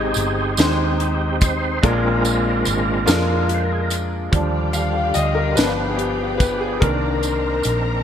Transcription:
Already playing: fingered electric bass G#1, grand piano C3 G#3 D#4 G4 C5, tonewheel organ C4 D#4 G4 G#4
0.14 fingered electric bass G1, closed hi-hat, tambourine
0.57 fingered electric bass D#2, grand piano G#3 D#4 G4 C5, tonewheel organ C4 D#4 G4, snare, closed hi-hat, tambourine
1.00 closed hi-hat
1.40 tonewheel organ C5, kick, closed hi-hat, tambourine
1.82 fingered electric bass A#1, grand piano A#2 G#3 D4 F4 A#4, tonewheel organ G#3 C4 D4 F4 A#4, kick, closed hi-hat
2.25 closed hi-hat, tambourine
2.65 fingered electric bass G#1, closed hi-hat, tambourine
3.06 fingered electric bass F2, grand piano G#3 D4 F4 A#4, tonewheel organ G#3 C4 D4, snare, closed hi-hat, tambourine
3.49 closed hi-hat
3.54 tonewheel organ C5
3.64 tonewheel organ A#4
3.72 tonewheel organ G#4
3.81 tonewheel organ A#4
3.90 closed hi-hat, tambourine
4.31 fingered electric bass D#2, tonewheel organ D3 G3 D4 F4, grand piano F3 G3 D4, string section G4 D5 F5 G5, kick, closed hi-hat
4.73 grand piano F5, closed hi-hat, tambourine
5.14 fingered electric bass D2, grand piano D#5, closed hi-hat, tambourine
5.35 grand piano A#4
5.55 fingered electric bass G1, grand piano F3 B3 D4 B4, tonewheel organ F3 B3 G4, string section B4 D5 G5, snare, closed hi-hat, tambourine
5.89 grand piano G#4
5.97 grand piano G4, closed hi-hat
6.38 grand piano B4, kick, closed hi-hat, tambourine
6.55 grand piano G4
6.60 grand piano G#4
6.80 fingered electric bass C2, grand piano D#3 A#3 D4 A#4, tonewheel organ D#3 C4 A#4, string section A#4 C5 A#5, kick, closed hi-hat
7.23 closed hi-hat, tambourine
7.63 fingered electric bass A#1, closed hi-hat, tambourine

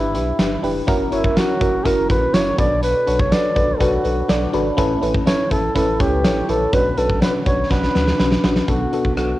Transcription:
Already playing: sub bass G1, fm electric piano G2 D4 E4 G4 B4, flugelhorn E4
0.14 sub bass B1, fm electric piano D4 E4 G4 B4, closed hi-hat
0.39 sub bass G1, fm electric piano D4 E4 G4 B4, snare, closed hi-hat, tambourine
0.62 sub bass F1, fm electric piano D4 E4 G4 B4, open hi-hat
0.87 sub bass F#1, fm electric piano C#4 E4 F#4 A#4, kick, closed hi-hat
1.11 sub bass F#1, fm electric piano C#4 E4 F#4 C#5, flugelhorn E4, closed hi-hat
1.24 kick
1.36 fm electric piano C#4 E4 F#4 A#4, flugelhorn F#4, snare, closed hi-hat, tambourine
1.60 sub bass F#1, fm electric piano C#4 E4 F#4 A#4, kick, closed hi-hat
1.84 sub bass F#1, fm electric piano C#4 E4 F#4 A#4, flugelhorn A#4, kick, closed hi-hat
2.09 sub bass A#1, fm electric piano C#4 E4 F#4 A#4, flugelhorn B4, kick, closed hi-hat
2.33 sub bass F#1, fm electric piano C#4 E4 F#4 C#5, flugelhorn C#5, snare, closed hi-hat, tambourine
2.57 sub bass B1, fm electric piano B2 C#4 F#4 A4 B4, flugelhorn D5, kick, closed hi-hat
2.63 fm electric piano D4
2.83 flugelhorn B4, closed hi-hat
3.07 sub bass B1, fm electric piano D4 F#4 A4 C#5, closed hi-hat
3.19 flugelhorn C#5, kick
3.31 fm electric piano D4 F#4 A4 B4, flugelhorn D5, snare, closed hi-hat, tambourine
3.55 sub bass B1, fm electric piano D4 F#4 A4 B4, kick, closed hi-hat
3.80 sub bass B1, fm electric piano D4 F#4 A4 B4, flugelhorn F#4, kick, closed hi-hat
4.04 sub bass B1, fm electric piano D4 F#4 A4 B4, closed hi-hat
4.28 sub bass B1, fm electric piano D4 F#4 A4 D5, snare, closed hi-hat, tambourine
4.53 sub bass G#1, fm electric piano D4 F#4 A4 B4, closed hi-hat
4.77 sub bass A1, fm electric piano A2 C#4 E4 A4 B4, kick, closed hi-hat
5.02 sub bass A1, fm electric piano C#4 E4 A4 B4, closed hi-hat
5.15 kick
5.26 fm electric piano C#4 E4 A4 B4, flugelhorn C#5, snare, closed hi-hat, tambourine
5.51 sub bass A1, fm electric piano C#4 E4 A4 B4, flugelhorn A4, kick, closed hi-hat
5.75 sub bass A1, fm electric piano C#4 E4 A4 B4, flugelhorn A4, kick, closed hi-hat
5.99 sub bass C#2, fm electric piano C#4 E4 A4 C#5, flugelhorn G4, kick, closed hi-hat
6.24 sub bass A1, fm electric piano C#4 E4 A4 C#5, snare, closed hi-hat, tambourine
6.48 sub bass A#1, fm electric piano C#4 E4 A4 B4, flugelhorn A4, closed hi-hat
6.73 sub bass B1, fm electric piano B2 C#4 D4 F#4 B4, flugelhorn B4, kick, closed hi-hat
6.97 sub bass B1, fm electric piano C#4 D4 F#4 B4, flugelhorn A4, closed hi-hat
7.10 kick
7.21 fm electric piano C#4 D4 F#4 B4, flugelhorn B4, snare, closed hi-hat, tambourine
7.46 sub bass B1, fm electric piano C#4 D4 F#4 B4, flugelhorn C#5, kick, closed hi-hat
7.70 sub bass B1, fm electric piano C#4 D4 F#4 B4, flugelhorn B4, kick, snare
7.83 snare
7.95 sub bass D2, fm electric piano C#4 D4 F#4 B4, snare
8.07 snare
8.19 sub bass B1, fm electric piano C#4 D4 F#4 B4, snare
8.32 snare
8.44 sub bass A#1, fm electric piano C#4 D4 F#4 B4, snare
8.56 snare
8.68 sub bass B1, fm electric piano B2 B3 D4 F#4 A4, flugelhorn F#4, kick, closed hi-hat
8.93 fm electric piano B3 D4 F#4 A4, closed hi-hat
9.05 sub bass B1, kick
9.16 sub bass B1, fm electric piano B3 D4 F#4 A4, flugelhorn F#4, cross-stick, closed hi-hat

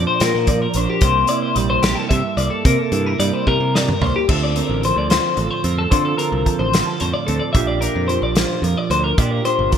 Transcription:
Already playing: clean electric guitar A#2 F3 D4 F4
0.07 clean electric guitar C5
0.20 picked electric bass A#2, clean electric guitar A#4, snare, closed hi-hat
0.35 picked electric bass A#2
0.47 clean electric guitar F3 D5, kick, closed hi-hat
0.62 clean electric guitar A#4
0.74 picked electric bass A#1, clean electric guitar D4 C5, closed hi-hat
0.90 clean electric guitar G4
1.01 picked electric bass C2, clean electric guitar C3 A#3 C5, kick, closed hi-hat
1.27 clean electric guitar E4 D5, closed hi-hat
1.42 clean electric guitar C5
1.56 picked electric bass A#1, clean electric guitar G3 D5, closed hi-hat
1.70 clean electric guitar C5
1.83 picked electric bass A#1, clean electric guitar G4, snare, closed hi-hat
1.95 clean electric guitar A4
2.09 clean electric guitar G2 E5, picked electric bass C3, kick, closed hi-hat
2.37 picked electric bass C2, clean electric guitar A#3 D5, closed hi-hat
2.50 clean electric guitar A4
2.65 picked electric bass C3, clean electric guitar C3 A#3 A#4, kick, closed hi-hat
2.79 clean electric guitar A4
2.92 picked electric bass G2, clean electric guitar E4, closed hi-hat
3.06 clean electric guitar A#4
3.19 picked electric bass G2, clean electric guitar G3 D5, closed hi-hat
3.33 clean electric guitar C5
3.47 picked electric bass C3, clean electric guitar A#4, kick
3.60 picked electric bass C3
3.74 clean electric guitar G2 D5, snare
3.89 clean electric guitar A#4, mid tom
4.01 picked electric bass C2, clean electric guitar A#3 C5, floor tom
4.16 clean electric guitar G4
4.28 picked electric bass D2, clean electric guitar D3 C4 F4 A4 E5, kick, crash
4.43 clean electric guitar D5
4.56 clean electric guitar C4 A#4, closed hi-hat
4.69 picked electric bass A1
4.83 clean electric guitar F3 C5, closed hi-hat
4.96 picked electric bass D2, clean electric guitar D5
5.10 clean electric guitar F4 C5, snare, closed hi-hat
5.37 picked electric bass A1, clean electric guitar A2 A4, closed hi-hat
5.51 clean electric guitar C5
5.64 picked electric bass F2, clean electric guitar C4 A#4, closed hi-hat
5.78 clean electric guitar A4
5.91 clean electric guitar D3 C4 F4 A4 C5, picked electric bass D3, kick, closed hi-hat
6.05 clean electric guitar A4
6.18 clean electric guitar C4 A#4, closed hi-hat
6.32 picked electric bass C2
6.45 clean electric guitar F3 A4, kick, closed hi-hat
6.59 picked electric bass A1, clean electric guitar C5
6.73 clean electric guitar F4, snare, closed hi-hat
6.86 clean electric guitar A4
7.00 picked electric bass F2, clean electric guitar A2 C5, closed hi-hat
7.14 clean electric guitar D5
7.27 picked electric bass D2, clean electric guitar C4 A4, closed hi-hat
7.40 clean electric guitar D5
7.53 picked electric bass A#1, clean electric guitar A#2 D4 F4 G4 E5, kick, closed hi-hat
7.67 clean electric guitar D5
7.81 clean electric guitar D4 A#4, closed hi-hat
7.96 picked electric bass F2
8.08 clean electric guitar F3 C5, closed hi-hat
8.22 picked electric bass A#1, clean electric guitar D5
8.35 clean electric guitar F4 C5, snare, closed hi-hat
8.62 picked electric bass F2, clean electric guitar F3 A#4, closed hi-hat
8.77 clean electric guitar D5
8.90 picked electric bass D2, clean electric guitar D4 C5, closed hi-hat
9.04 clean electric guitar A#4
9.18 picked electric bass A#2, clean electric guitar A#2 D4 F4 G4 D5, kick, closed hi-hat
9.31 clean electric guitar A#4
9.45 clean electric guitar D4 C5, closed hi-hat
9.59 picked electric bass G1
9.72 clean electric guitar F3 A#4, kick, closed hi-hat

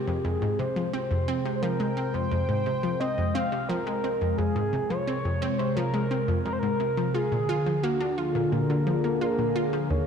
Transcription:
Already playing: analog synth pad C3 G#3 F4 C5, soft synth lead G4
0.07 synth arpeggio sound F2
0.24 synth arpeggio sound F2, soft synth lead G#4, analog synth pad G5
0.42 synth arpeggio sound G#2
0.59 synth arpeggio sound C3, soft synth lead C5
0.76 synth arpeggio sound F3
0.93 synth arpeggio sound C4, soft synth lead C5
1.11 synth arpeggio sound F2
1.28 synth arpeggio sound C4
1.45 synth arpeggio sound C3
1.55 soft synth lead C5
1.62 synth arpeggio sound F3, soft synth lead A#4
1.80 synth arpeggio sound G#3
1.97 synth arpeggio sound C4
2.14 synth arpeggio sound F2, soft synth lead C5
2.32 synth arpeggio sound F2
2.49 synth arpeggio sound G#2
2.66 synth arpeggio sound C3
2.83 synth arpeggio sound F3
3.00 synth arpeggio sound C4, soft synth lead D#5
3.18 synth arpeggio sound F2
3.34 synth arpeggio sound C4, soft synth lead F5
3.52 synth arpeggio sound C3
3.69 synth arpeggio sound F3, soft synth lead A#4
3.87 synth arpeggio sound G#3
4.04 synth arpeggio sound C4
4.21 synth arpeggio sound F2
4.38 synth arpeggio sound F2, soft synth lead G#4
4.56 synth arpeggio sound G#2
4.73 synth arpeggio sound C3
4.89 synth arpeggio sound F3, soft synth lead C#5
5.07 synth arpeggio sound C4
5.25 synth arpeggio sound F2
5.42 synth arpeggio sound C4
5.58 synth arpeggio sound C3, soft synth lead C5
5.76 synth arpeggio sound F3, soft synth lead A#4
5.94 synth arpeggio sound G#3
6.11 synth arpeggio sound C4
6.28 synth arpeggio sound F2
6.45 synth arpeggio sound F2, soft synth lead A#4
6.53 soft synth lead C5
6.59 synth arpeggio sound G#2, soft synth lead A#4
6.80 synth arpeggio sound C3
6.97 synth arpeggio sound F3
7.14 analog synth pad D3, synth arpeggio sound F4, soft synth lead G#4
7.32 synth arpeggio sound A#2
7.49 synth arpeggio sound F4
7.66 synth arpeggio sound F3
7.83 synth arpeggio sound A#3, soft synth lead F#4
7.89 analog synth pad A#3
7.96 analog synth pad F4
8.00 synth arpeggio sound D4
8.18 soft synth lead F4, synth arpeggio sound F4
8.35 synth arpeggio sound A#2, analog synth pad G#4
8.52 synth arpeggio sound A#2, soft synth lead A#4
8.70 synth arpeggio sound D3
8.87 synth arpeggio sound F3
9.04 synth arpeggio sound A#3
9.21 synth arpeggio sound F4, soft synth lead A#4
9.39 synth arpeggio sound A#2
9.56 synth arpeggio sound F4
9.73 synth arpeggio sound F3
9.90 synth arpeggio sound D#2, analog synth pad A#2, soft synth lead C#5

